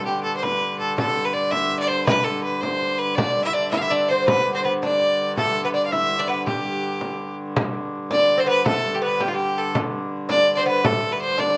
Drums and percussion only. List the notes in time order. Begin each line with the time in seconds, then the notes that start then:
0.25 frame drum
0.43 frame drum
0.61 frame drum
0.80 frame drum
0.98 frame drum
1.35 frame drum
1.52 frame drum
1.72 frame drum
1.89 frame drum
2.07 frame drum
2.63 frame drum
2.82 frame drum
3.18 frame drum
3.55 frame drum
3.73 frame drum
3.91 frame drum
4.09 frame drum
4.28 frame drum
4.64 frame drum
4.83 frame drum
5.01 frame drum
5.37 frame drum
5.74 frame drum
5.93 frame drum
6.10 frame drum
6.29 frame drum
6.47 frame drum
6.65 frame drum
7.01 frame drum
7.56 frame drum
8.11 frame drum
8.29 frame drum
8.66 frame drum
9.21 frame drum
9.39 frame drum
9.75 frame drum
10.29 frame drum
10.48 frame drum
10.85 frame drum
11.03 frame drum
11.21 frame drum
11.39 frame drum